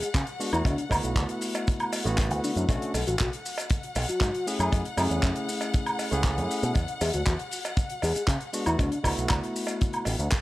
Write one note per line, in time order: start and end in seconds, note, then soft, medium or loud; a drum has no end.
0.00 2.68 F#5 medium
0.00 muted picked electric bass stroke soft
0.00 closed hi-hat medium
0.00 shaker medium
0.14 0.23 C#3 loud
0.14 kick loud
0.14 clap loud
0.14 closed hi-hat loud
0.14 shaker medium
0.27 closed hi-hat medium
0.40 0.51 G#3 medium
0.40 0.51 B3 medium
0.40 0.51 D4 medium
0.40 0.51 F#4 medium
0.40 open hi-hat loud
0.40 shaker medium
0.52 0.61 E2 medium
0.52 0.75 A3 medium
0.52 0.75 B3 medium
0.52 0.63 E4 medium
0.52 0.75 E4 medium
0.52 0.76 F#4 medium
0.52 closed hi-hat medium
0.52 high woodblock medium
0.52 shaker medium
0.65 0.74 D2 loud
0.65 0.85 D4 medium
0.65 kick loud
0.65 closed hi-hat medium
0.65 cowbell medium
0.65 shaker soft
0.78 closed hi-hat medium
0.90 0.99 D2 loud
0.90 2.02 A3 medium
0.90 2.02 B3 medium
0.90 2.02 E4 medium
0.90 2.03 F#4 loud
0.90 kick medium
0.90 open hi-hat loud
0.90 cowbell loud
0.90 high woodblock medium
0.90 shaker medium
1.03 1.12 B1 medium
1.03 closed hi-hat medium
1.03 shaker medium
1.16 1.24 D2 medium
1.16 kick loud
1.16 clap loud
1.16 closed hi-hat medium
1.16 shaker medium
1.29 closed hi-hat medium
1.41 open hi-hat loud
1.41 shaker loud
1.54 closed hi-hat medium
1.54 cowbell loud
1.54 shaker medium
1.67 kick loud
1.67 closed hi-hat medium
1.67 shaker medium
1.80 closed hi-hat soft
1.80 high woodblock medium
1.92 open hi-hat loud
1.92 cowbell loud
1.92 shaker medium
2.04 2.31 A1 medium
2.04 2.67 A3 medium
2.04 2.67 B3 medium
2.04 2.68 E4 medium
2.04 2.68 F#4 loud
2.04 closed hi-hat soft
2.04 shaker medium
2.18 kick loud
2.18 clap loud
2.18 closed hi-hat loud
2.18 shaker medium
2.31 2.39 D2 medium
2.31 closed hi-hat medium
2.44 2.52 D4 loud
2.44 open hi-hat medium
2.44 shaker medium
2.55 2.64 F#2 loud
2.55 2.64 D4 medium
2.55 closed hi-hat medium
2.55 shaker medium
2.69 2.77 B1 loud
2.69 2.91 A3 medium
2.69 2.91 C#4 medium
2.69 2.92 D4 medium
2.69 2.92 F#4 loud
2.69 10.41 F#5 medium
2.69 kick loud
2.69 closed hi-hat loud
2.69 cowbell medium
2.69 shaker medium
2.82 closed hi-hat medium
2.94 3.03 B1 loud
2.94 3.05 A4 medium
2.94 open hi-hat loud
2.94 cowbell medium
2.94 shaker medium
3.07 3.15 A1 medium
3.07 3.15 F#4 medium
3.07 closed hi-hat soft
3.07 shaker medium
3.19 3.28 B1 medium
3.19 3.28 F#4 medium
3.19 kick loud
3.19 clap loud
3.19 closed hi-hat medium
3.19 shaker soft
3.33 closed hi-hat medium
3.45 open hi-hat loud
3.45 shaker medium
3.58 closed hi-hat medium
3.58 cowbell loud
3.58 shaker medium
3.70 kick loud
3.70 closed hi-hat loud
3.70 shaker soft
3.83 closed hi-hat medium
3.95 4.04 B1 medium
3.95 open hi-hat loud
3.95 cowbell loud
3.95 shaker medium
4.08 4.47 F#4 loud
4.08 muted picked electric bass stroke soft
4.08 closed hi-hat medium
4.08 shaker medium
4.21 4.29 G#2 loud
4.21 kick loud
4.21 clap loud
4.21 closed hi-hat medium
4.21 shaker medium
4.34 closed hi-hat medium
4.46 4.58 A3 medium
4.46 4.58 C#4 medium
4.46 4.58 E4 medium
4.46 4.58 G#4 medium
4.46 open hi-hat loud
4.46 shaker medium
4.59 4.68 F#2 medium
4.59 4.82 A3 medium
4.59 4.82 C#4 medium
4.59 4.82 E4 medium
4.59 4.82 G#4 medium
4.59 closed hi-hat medium
4.59 high woodblock medium
4.59 shaker medium
4.72 4.81 F#2 loud
4.72 kick loud
4.72 closed hi-hat loud
4.72 cowbell medium
4.72 shaker soft
4.85 closed hi-hat medium
4.97 5.06 F#2 loud
4.97 6.09 A3 medium
4.97 5.08 C#4 loud
4.97 6.09 C#4 medium
4.97 6.09 E4 medium
4.97 6.10 G#4 loud
4.97 open hi-hat loud
4.97 cowbell medium
4.97 high woodblock medium
4.97 shaker loud
5.10 5.19 E2 medium
5.10 5.48 C#4 medium
5.10 closed hi-hat medium
5.10 shaker medium
5.23 5.31 F#2 medium
5.23 kick loud
5.23 clap loud
5.23 closed hi-hat medium
5.23 shaker medium
5.36 closed hi-hat medium
5.49 open hi-hat medium
5.49 shaker medium
5.61 closed hi-hat soft
5.61 cowbell medium
5.61 shaker medium
5.74 kick loud
5.74 closed hi-hat medium
5.74 shaker soft
5.86 closed hi-hat medium
5.86 high woodblock medium
5.99 open hi-hat loud
5.99 cowbell medium
5.99 shaker medium
6.11 6.39 C#2 medium
6.11 6.73 A3 loud
6.11 6.74 C#4 medium
6.11 6.74 E4 medium
6.11 6.74 G#4 loud
6.11 closed hi-hat medium
6.11 shaker medium
6.24 kick loud
6.24 clap loud
6.24 closed hi-hat loud
6.24 shaker medium
6.38 6.46 F#2 medium
6.38 closed hi-hat medium
6.51 open hi-hat medium
6.51 shaker medium
6.63 6.71 B2 loud
6.63 closed hi-hat medium
6.63 shaker medium
6.74 6.84 E2 loud
6.74 kick loud
6.74 closed hi-hat loud
6.74 cowbell medium
6.74 shaker soft
6.88 closed hi-hat medium
7.01 7.09 E2 loud
7.01 7.11 G#4 loud
7.01 open hi-hat loud
7.01 cowbell medium
7.01 shaker medium
7.14 7.22 D2 medium
7.14 7.22 F#4 medium
7.14 closed hi-hat medium
7.14 shaker medium
7.26 7.35 E2 medium
7.26 7.34 F#4 medium
7.26 kick loud
7.26 clap loud
7.26 closed hi-hat loud
7.26 shaker medium
7.39 closed hi-hat medium
7.51 open hi-hat loud
7.51 shaker medium
7.65 closed hi-hat medium
7.65 cowbell medium
7.65 shaker medium
7.77 kick loud
7.77 closed hi-hat medium
7.77 shaker medium
7.90 closed hi-hat medium
8.02 8.11 E2 loud
8.02 8.22 G#4 medium
8.02 open hi-hat loud
8.02 cowbell medium
8.02 shaker medium
8.15 muted picked electric bass stroke soft
8.15 closed hi-hat medium
8.15 shaker medium
8.28 8.36 C#3 loud
8.28 kick loud
8.28 clap loud
8.28 closed hi-hat loud
8.28 shaker medium
8.41 closed hi-hat medium
8.53 8.64 G#3 medium
8.53 8.64 B3 medium
8.53 8.65 D4 medium
8.53 8.65 F#4 medium
8.53 open hi-hat medium
8.53 shaker medium
8.66 8.75 E2 medium
8.66 8.89 A3 medium
8.66 8.89 B3 medium
8.66 8.76 E4 medium
8.66 8.89 E4 medium
8.66 8.89 F#4 medium
8.66 closed hi-hat medium
8.66 high woodblock medium
8.66 shaker medium
8.79 8.87 D2 loud
8.79 8.99 D4 medium
8.79 kick loud
8.79 closed hi-hat medium
8.79 cowbell medium
8.79 shaker soft
8.92 closed hi-hat medium
9.04 9.13 D2 loud
9.04 10.15 A3 medium
9.04 10.16 B3 medium
9.04 10.16 E4 medium
9.04 10.16 F#4 loud
9.04 kick medium
9.04 open hi-hat loud
9.04 cowbell medium
9.04 high woodblock medium
9.04 shaker medium
9.17 9.26 B1 medium
9.17 closed hi-hat medium
9.17 shaker medium
9.29 9.38 D2 medium
9.29 kick loud
9.29 clap loud
9.29 closed hi-hat loud
9.29 high woodblock medium
9.29 shaker soft
9.43 closed hi-hat medium
9.56 open hi-hat loud
9.56 shaker medium
9.67 closed hi-hat medium
9.67 cowbell loud
9.67 shaker medium
9.81 kick loud
9.81 closed hi-hat medium
9.81 shaker medium
9.93 closed hi-hat medium
9.93 high woodblock medium
10.05 10.15 A1 medium
10.05 open hi-hat loud
10.05 cowbell medium
10.05 shaker medium
10.19 10.27 D2 loud
10.19 closed hi-hat medium
10.19 shaker medium
10.31 kick loud
10.31 clap loud
10.31 closed hi-hat loud
10.31 shaker medium